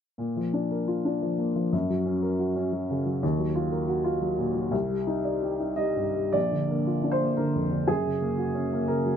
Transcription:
0.18 1.68 A#2 soft
0.36 0.64 F3 soft
0.53 0.81 D4 soft
0.71 0.98 A#4 soft
0.88 1.15 F4 soft
1.05 1.32 D4 soft
1.22 1.49 F3 soft
1.38 1.65 A#3 soft
1.56 1.72 F3 soft
1.73 3.19 F#2 soft
1.90 2.16 F#3 soft
2.05 2.33 C#4 soft
2.22 2.49 A#4 soft
2.39 2.66 F#4 soft
2.56 2.83 C#4 soft
2.72 2.99 F#3 soft
2.90 3.16 C#3 soft
3.06 3.22 F#3 soft
3.23 4.69 D#2 medium
3.38 3.65 F#3 soft
3.55 3.82 F4 soft
3.71 3.98 A#4 soft
3.88 4.15 F#4 soft
4.04 4.32 F4 soft
4.21 4.49 F#3 soft
4.38 4.66 A#2 soft
4.55 4.73 F#3 soft
4.71 6.30 C2 soft
4.89 5.17 G3 soft
5.07 5.35 D#4 soft
5.24 5.53 D5 soft
5.43 5.71 G4 soft
5.60 5.89 D#4 soft
5.76 6.08 G3 soft
5.76 6.33 D#5 medium
5.96 6.27 G2 soft
6.15 6.34 G3 soft
6.33 7.84 A#1 soft
6.33 7.12 D5 medium
6.51 6.80 D3 soft
6.69 6.97 A#3 soft
6.87 7.14 F4 soft
7.03 7.31 D4 soft
7.11 7.37 C5 medium
7.21 7.48 A#3 soft
7.37 7.65 D3 soft
7.37 7.87 A#4 medium
7.55 7.82 F2 soft
7.72 7.88 D3 soft
7.87 9.17 F#2 soft
7.87 8.89 G#4 medium
8.06 8.32 C#3 soft
8.22 8.48 A#3 soft
8.38 8.65 F#4 soft
8.54 8.82 C#4 soft
8.72 8.99 A#3 soft
8.88 9.16 C#3 soft
8.88 9.17 A#4 medium
9.06 9.17 F#3 soft

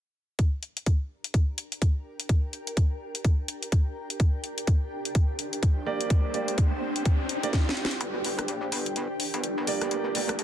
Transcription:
0.39 10.44 D4 medium
0.39 kick loud
0.39 closed hi-hat medium
0.61 5.23 A#4 medium
0.61 closed hi-hat soft
0.69 10.44 G4 medium
0.77 closed hi-hat medium
0.86 kick loud
0.86 closed hi-hat medium
1.24 closed hi-hat medium
1.30 10.44 G5 medium
1.30 kick loud
1.30 closed hi-hat medium
1.58 closed hi-hat medium
1.72 closed hi-hat medium
1.82 kick loud
1.82 closed hi-hat medium
2.20 closed hi-hat medium
2.29 kick loud
2.29 closed hi-hat medium
2.53 closed hi-hat soft
2.67 closed hi-hat soft
2.77 kick loud
2.77 closed hi-hat medium
3.15 closed hi-hat soft
3.25 kick loud
3.25 closed hi-hat medium
3.48 closed hi-hat medium
3.63 closed hi-hat soft
3.72 kick loud
3.72 closed hi-hat medium
4.10 closed hi-hat medium
4.20 kick loud
4.20 closed hi-hat medium
4.20 riser medium
4.44 closed hi-hat soft
4.58 closed hi-hat soft
4.67 kick loud
4.67 closed hi-hat medium
5.05 8.72 C5 medium
5.05 closed hi-hat soft
5.15 kick loud
5.15 closed hi-hat medium
5.39 closed hi-hat medium
5.53 closed hi-hat soft
5.63 kick loud
5.63 closed hi-hat medium
5.86 6.32 A#3 medium
5.86 6.32 G4 medium
5.86 6.32 D5 loud
6.01 closed hi-hat soft
6.10 kick loud
6.10 closed hi-hat medium
6.34 6.51 A#3 medium
6.34 6.51 G4 medium
6.34 6.51 D5 medium
6.34 closed hi-hat soft
6.48 closed hi-hat soft
6.58 kick loud
6.58 closed hi-hat medium
6.96 closed hi-hat soft
7.05 kick loud
7.05 closed hi-hat medium
7.29 closed hi-hat medium
7.43 7.51 A#3 loud
7.43 7.51 G4 medium
7.43 7.51 D5 loud
7.43 closed hi-hat soft
7.53 kick loud
7.53 snare medium
7.53 closed hi-hat medium
7.69 snare medium
7.77 closed hi-hat soft
7.85 snare medium
7.91 closed hi-hat soft
8.01 8.47 G1 loud
8.01 closed hi-hat medium
8.01 riser medium
8.24 open hi-hat loud
8.39 cross-stick medium
8.39 closed hi-hat medium
8.45 8.71 A#1 loud
8.45 10.44 A#4 medium
8.45 closed hi-hat medium
8.72 9.08 G1 loud
8.72 open hi-hat loud
8.86 closed hi-hat medium
8.96 closed hi-hat medium
9.20 open hi-hat loud
9.34 9.55 G1 loud
9.34 closed hi-hat medium
9.44 closed hi-hat medium
9.58 9.90 G1 loud
9.67 10.13 A#3 medium
9.67 10.13 G4 medium
9.67 10.13 D5 loud
9.67 open hi-hat loud
9.81 cross-stick medium
9.81 closed hi-hat medium
9.91 10.37 G1 medium
9.91 closed hi-hat medium
10.15 10.32 A#3 medium
10.15 10.32 G4 medium
10.15 10.32 D5 medium
10.15 open hi-hat loud
10.29 cross-stick medium
10.29 closed hi-hat medium
10.39 10.44 F1 medium
10.39 closed hi-hat medium

